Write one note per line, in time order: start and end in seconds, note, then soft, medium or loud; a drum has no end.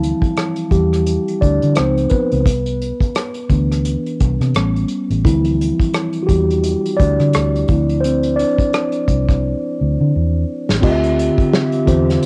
0.00 0.12 D2 medium
0.00 0.69 E3 medium
0.00 0.68 F3 soft
0.00 0.69 G3 soft
0.00 0.69 C4 soft
0.00 0.69 E4 medium
0.00 closed hi-hat medium
0.22 muted fingered electric bass stroke soft
0.22 kick medium
0.22 closed hi-hat soft
0.37 cross-stick medium
0.37 closed hi-hat medium
0.56 closed hi-hat soft
0.71 1.16 E2 medium
0.71 1.38 G3 medium
0.71 1.43 G4 medium
0.71 kick medium
0.71 closed hi-hat medium
0.93 cross-stick soft
0.93 closed hi-hat soft
1.06 closed hi-hat medium
1.28 closed hi-hat soft
1.41 1.58 D2 medium
1.41 1.74 D4 medium
1.41 1.77 D5 medium
1.41 kick medium
1.41 closed hi-hat medium
1.62 1.74 D3 medium
1.62 closed hi-hat soft
1.75 2.06 C#2 medium
1.75 2.24 F3 medium
1.75 2.10 C4 medium
1.75 2.25 D#4 medium
1.75 2.12 C5 medium
1.75 cross-stick medium
1.75 closed hi-hat medium
1.98 closed hi-hat soft
2.10 3.50 B3 medium
2.10 4.16 B4 medium
2.10 muted fingered electric bass stroke soft
2.10 kick medium
2.10 closed hi-hat soft
2.32 2.47 C#2 medium
2.32 closed hi-hat soft
2.46 2.91 C2 medium
2.46 kick loud
2.46 closed hi-hat medium
2.66 closed hi-hat soft
2.82 closed hi-hat medium
3.01 muted fingered electric bass stroke soft
3.01 kick medium
3.01 closed hi-hat soft
3.15 cross-stick medium
3.15 closed hi-hat medium
3.34 closed hi-hat soft
3.50 3.95 D2 medium
3.50 4.51 E3 soft
3.50 4.52 B3 soft
3.50 4.52 D4 soft
3.50 kick medium
3.50 closed hi-hat medium
3.72 cross-stick soft
3.72 closed hi-hat soft
3.85 closed hi-hat medium
4.06 closed hi-hat soft
4.20 4.37 C2 medium
4.20 kick medium
4.20 closed hi-hat soft
4.40 4.52 C3 medium
4.40 cross-stick soft
4.40 closed hi-hat soft
4.55 4.84 A1 medium
4.55 5.22 G3 soft
4.55 5.22 B3 soft
4.55 5.23 C#4 medium
4.55 cross-stick medium
4.55 closed hi-hat medium
4.76 closed hi-hat soft
4.88 closed hi-hat soft
5.10 5.22 A1 medium
5.10 closed hi-hat soft
5.25 5.70 D2 medium
5.25 6.20 E3 medium
5.25 5.74 F3 soft
5.25 5.74 G3 soft
5.25 5.74 C4 soft
5.25 5.27 E4 medium
5.25 5.74 E4 medium
5.25 kick loud
5.25 closed hi-hat medium
5.44 closed hi-hat soft
5.61 closed hi-hat medium
5.79 muted fingered electric bass stroke soft
5.79 kick medium
5.79 closed hi-hat soft
5.93 cross-stick medium
5.93 closed hi-hat medium
6.13 closed hi-hat soft
6.23 6.29 F#4 medium
6.27 6.74 E2 medium
6.27 6.96 G3 medium
6.27 7.00 G4 medium
6.27 kick medium
6.27 closed hi-hat medium
6.50 closed hi-hat soft
6.64 closed hi-hat medium
6.86 closed hi-hat soft
6.97 7.16 D2 medium
6.97 8.00 D4 medium
6.97 7.99 D5 loud
6.97 kick medium
6.97 closed hi-hat soft
7.20 7.32 D3 medium
7.20 cross-stick soft
7.20 closed hi-hat soft
7.33 7.63 D2 medium
7.33 cross-stick medium
7.33 closed hi-hat medium
7.56 closed hi-hat soft
7.68 8.43 D2 medium
7.68 8.17 F3 soft
7.68 8.04 C4 soft
7.68 8.18 E4 medium
7.68 kick medium
7.68 closed hi-hat medium
7.89 closed hi-hat soft
8.01 8.38 C5 medium
8.01 closed hi-hat medium
8.05 8.37 C4 medium
8.23 closed hi-hat soft
8.36 10.45 D4 medium
8.36 10.43 D5 medium
8.36 closed hi-hat medium
8.59 muted fingered electric bass stroke soft
8.59 kick medium
8.59 closed hi-hat soft
8.73 cross-stick medium
8.73 closed hi-hat medium
8.92 closed hi-hat soft
9.08 9.53 C2 medium
9.08 kick medium
9.08 closed hi-hat medium
9.29 kick medium
9.29 cross-stick soft
9.29 closed hi-hat soft
9.81 9.96 D2 medium
10.01 10.12 D3 medium
10.16 10.43 E2 medium
10.69 10.81 A1 medium
10.69 snare medium
10.81 11.28 D2 medium
10.81 11.78 D3 loud
10.81 12.26 D3 medium
10.81 11.78 C4 medium
10.81 12.26 C4 medium
10.81 12.26 F4 medium
10.81 11.78 F4 medium
10.81 12.26 G4 medium
10.81 11.79 G4 medium
10.81 10.91 D#5 medium
10.81 12.26 E5 medium
10.81 kick loud
10.81 crash medium
10.90 11.82 E5 loud
11.04 closed hi-hat soft
11.19 closed hi-hat medium
11.38 muted fingered electric bass stroke soft
11.38 kick medium
11.38 closed hi-hat soft
11.53 snare medium
11.72 closed hi-hat soft
11.85 12.16 E2 medium
11.85 12.26 D3 medium
11.85 12.26 C4 medium
11.85 12.26 F4 medium
11.85 12.26 G4 medium
11.85 12.26 C5 medium
11.85 kick medium
11.85 closed hi-hat medium
12.10 snare soft
12.10 closed hi-hat soft
12.23 closed hi-hat medium